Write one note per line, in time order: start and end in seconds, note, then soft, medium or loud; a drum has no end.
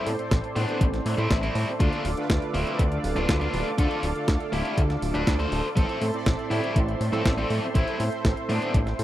0.00 0.16 A2 medium
0.00 0.16 C4 medium
0.00 0.16 E4 medium
0.00 0.16 A4 medium
0.00 9.04 A4 medium
0.00 0.16 C5 medium
0.00 1.76 C5 medium
0.00 5.73 D5 medium
0.00 1.76 C6 loud
0.07 0.16 A2 medium
0.07 open hi-hat loud
0.19 1.77 A2 medium
0.19 1.77 C4 medium
0.19 1.77 E4 medium
0.19 1.77 A4 medium
0.19 1.77 C5 medium
0.19 closed hi-hat soft
0.31 0.41 A1 loud
0.31 kick loud
0.31 snare loud
0.31 closed hi-hat loud
0.44 closed hi-hat soft
0.56 0.66 A2 loud
0.56 0.82 B3 medium
0.56 0.82 D4 medium
0.56 open hi-hat medium
0.69 closed hi-hat soft
0.81 1.00 A1 medium
0.81 kick loud
0.81 closed hi-hat loud
0.94 snare soft
0.94 closed hi-hat soft
1.06 1.15 A2 medium
1.06 open hi-hat loud
1.18 1.28 A2 medium
1.18 1.35 C4 medium
1.18 1.35 E4 medium
1.31 1.50 A1 medium
1.31 kick loud
1.31 snare loud
1.31 closed hi-hat loud
1.43 1.68 C4 medium
1.43 1.68 E4 medium
1.43 closed hi-hat soft
1.55 1.65 A2 medium
1.55 open hi-hat loud
1.80 1.90 D2 loud
1.80 2.14 D3 medium
1.80 2.14 A3 medium
1.80 2.14 D4 medium
1.80 2.06 D4 medium
1.80 2.14 F4 medium
1.80 2.06 F4 medium
1.80 2.14 A4 medium
1.80 5.73 F5 medium
1.80 5.73 D6 loud
1.80 kick loud
1.80 closed hi-hat medium
1.93 closed hi-hat soft
2.05 2.15 D1 medium
2.05 open hi-hat loud
2.17 3.75 D3 loud
2.17 3.75 A3 medium
2.17 3.75 D4 medium
2.17 3.75 F4 medium
2.17 3.75 B4 loud
2.17 closed hi-hat soft
2.30 2.39 D2 loud
2.30 kick loud
2.30 snare loud
2.30 closed hi-hat medium
2.42 closed hi-hat soft
2.54 2.64 D1 loud
2.54 2.80 C4 medium
2.54 2.80 E4 medium
2.54 open hi-hat medium
2.67 closed hi-hat soft
2.79 2.99 D2 medium
2.79 kick loud
2.79 closed hi-hat medium
2.92 closed hi-hat soft
3.04 3.14 D1 loud
3.04 open hi-hat loud
3.16 3.26 D1 medium
3.16 3.34 D4 medium
3.16 3.34 F4 medium
3.16 snare soft
3.16 closed hi-hat soft
3.29 3.48 D2 medium
3.29 kick loud
3.29 snare loud
3.29 closed hi-hat loud
3.41 3.67 D4 medium
3.41 3.67 F4 medium
3.41 closed hi-hat soft
3.54 3.63 D1 medium
3.54 open hi-hat medium
3.78 3.88 D2 loud
3.78 4.13 D3 medium
3.78 4.13 A3 medium
3.78 4.13 D4 medium
3.78 4.04 F4 medium
3.78 4.13 F4 medium
3.78 4.13 A4 medium
3.78 4.04 A4 medium
3.78 kick loud
3.78 closed hi-hat loud
3.91 closed hi-hat soft
4.03 4.13 D1 medium
4.03 open hi-hat loud
4.16 5.25 D3 medium
4.16 5.25 A3 medium
4.16 5.25 D4 medium
4.16 5.25 F4 medium
4.16 5.25 A4 medium
4.16 closed hi-hat soft
4.28 4.38 D2 loud
4.28 kick loud
4.28 snare loud
4.28 closed hi-hat medium
4.40 closed hi-hat soft
4.53 4.62 D1 loud
4.53 4.78 E4 medium
4.53 4.78 G4 medium
4.53 open hi-hat medium
4.65 closed hi-hat soft
4.78 4.97 D2 medium
4.78 kick loud
4.78 closed hi-hat medium
4.90 snare soft
4.90 closed hi-hat soft
5.02 5.12 D1 medium
5.02 open hi-hat loud
5.15 5.24 D1 medium
5.15 5.32 D4 medium
5.15 5.32 B4 medium
5.15 closed hi-hat soft
5.27 5.47 D2 loud
5.27 5.58 D3 loud
5.27 5.58 A3 medium
5.27 5.58 D4 medium
5.27 5.58 F4 medium
5.27 5.58 A4 loud
5.27 kick loud
5.27 snare loud
5.27 closed hi-hat loud
5.39 5.65 A4 medium
5.39 5.65 C5 medium
5.39 closed hi-hat soft
5.52 5.62 D1 loud
5.52 open hi-hat medium
5.77 5.86 A1 medium
5.77 6.11 A2 medium
5.77 6.11 C4 medium
5.77 6.02 C4 medium
5.77 6.11 E4 medium
5.77 6.11 A4 medium
5.77 6.02 A4 medium
5.77 6.11 C5 medium
5.77 9.04 C5 medium
5.77 9.04 E5 medium
5.77 9.04 C6 loud
5.77 kick loud
5.77 closed hi-hat medium
5.89 closed hi-hat soft
6.02 6.11 A2 medium
6.02 open hi-hat loud
6.14 7.72 A2 loud
6.14 7.72 C4 medium
6.14 7.72 E4 medium
6.14 7.72 A4 medium
6.14 7.72 D5 loud
6.14 closed hi-hat soft
6.26 6.36 A1 loud
6.26 kick loud
6.26 snare loud
6.26 closed hi-hat medium
6.39 closed hi-hat soft
6.51 6.61 A2 loud
6.51 6.77 E4 medium
6.51 6.77 G4 medium
6.51 open hi-hat medium
6.64 closed hi-hat soft
6.76 6.95 A1 loud
6.76 kick loud
6.76 closed hi-hat medium
6.89 closed hi-hat soft
7.01 7.10 A2 loud
7.01 open hi-hat loud
7.13 7.23 A2 medium
7.13 7.30 C4 medium
7.13 7.30 A4 medium
7.13 snare soft
7.13 closed hi-hat soft
7.25 7.45 A1 medium
7.25 kick loud
7.25 snare loud
7.25 closed hi-hat medium
7.38 7.64 C4 medium
7.38 7.64 A4 medium
7.38 closed hi-hat soft
7.50 7.60 A2 medium
7.50 open hi-hat medium
7.75 7.85 A1 medium
7.75 8.09 A2 medium
7.75 8.01 C4 medium
7.75 8.09 C4 medium
7.75 8.09 E4 medium
7.75 8.01 E4 loud
7.75 8.09 A4 medium
7.75 8.09 C5 medium
7.75 kick loud
7.75 closed hi-hat medium
7.88 closed hi-hat soft
8.00 8.10 A2 medium
8.00 open hi-hat loud
8.12 9.04 A2 medium
8.12 9.04 C4 medium
8.12 9.04 E4 medium
8.12 9.04 A4 medium
8.12 9.04 C5 medium
8.12 closed hi-hat soft
8.25 8.34 A1 loud
8.25 kick loud
8.25 snare loud
8.25 closed hi-hat medium
8.37 closed hi-hat soft
8.49 8.59 A2 loud
8.49 8.75 B3 medium
8.49 8.75 D4 medium
8.49 open hi-hat medium
8.62 closed hi-hat soft
8.74 8.94 A1 medium
8.74 kick loud
8.74 closed hi-hat medium
8.87 snare soft
8.87 closed hi-hat soft
8.99 9.04 A2 medium
8.99 open hi-hat loud